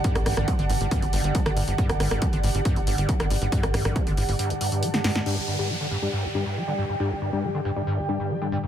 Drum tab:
CC |----------------|----------------|----------------|x---------------|
HH |xxoxxxoxxxoxxxox|xxoxxxoxxxoxxxox|xxoxxxooxxoxxxox|----------------|
SD |-rrr---------r--|-rrr---------r--|-rrr---------ooo|----------------|
BD |o---o---o---o---|o---o---o---o---|o---o-----------|----------------|

CC |----------------|
HH |----------------|
SD |----------------|
BD |----------------|